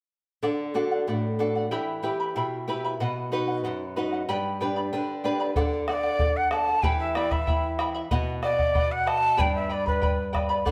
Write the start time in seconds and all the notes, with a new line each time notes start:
0.43 D3 A4 D5 F#5
0.74 D4 F#4 A4 D5 F#5
0.91 D5 F#5
1.07 A2 A4 D5 F#5
1.39 D4 F#4 A4 D5 F#5
1.55 D5 F#5
1.71 E3 E4 G4 E5 G5 B5
2.03 E4 G4 B4 E5 G5 B5
2.20 E4 E5 B5
2.36 B2 E4 E5 G5 B5
2.68 E4 G4 B4 E5 G5 B5
2.84 E4 E5 B5
3.00 B2 B4 D#5 F#5
3.31 D#4 F#4 B4 D#5 F#5
3.48 D#5 F#5
3.64 F#2 B4 D#5 F#5
3.96 D#4 F#4 B4 D#5 F#5
4.12 D#5 F#5
4.29 G2 G4 B4 D5 G5 B5
4.61 D4 G4 B4 D5 G5 B5
4.76 B4 D5 B5
4.93 D3 B4 D5 G5 B5
5.24 D4 G4 B4 D5 G5 B5
5.40 B4 D5 B5
5.56 D3 A4 D5 F#5, bombo low
5.88 A4 D5 F#5, bombo rim
6.03 D5 F#5
6.19 A4 D5 F#5, bombo low
6.37 F#5
6.51 A4 D5 F#5 A5, bombo rim
6.68 D5 F#5
6.83 E3 E4 G4 E5 G5 B5, bombo low
6.99 E5
7.15 E4 D5 E5 G5 B5, bombo rim
7.31 E4 E5 B5, bombo low
7.47 E4 E5 G5 B5, bombo low
7.79 E4 E5 G5 B5, bombo rim
7.94 E4 E5 B5
8.11 B2 B4 D#5 F#5, bombo low
8.42 B4 D5 D#5 F#5, bombo rim
8.58 D#5 F#5, bombo low
8.75 B4 D#5 F#5, bombo low
8.92 F#5
9.06 B4 D#5 F#5 A5, bombo rim
9.21 D#5 F#5
9.37 G2 G4 B4 D5 G5 B5, bombo low
9.55 E5
9.69 B4 D5 G5 B5
9.86 B4 D5 B5, bombo low
10.02 B4 D5 G5 B5, bombo low
10.33 B4 D5 G5 B5, bombo rim, bombo low
10.49 B4 D5 B5
10.65 D3 A4 D5 F#5, bombo low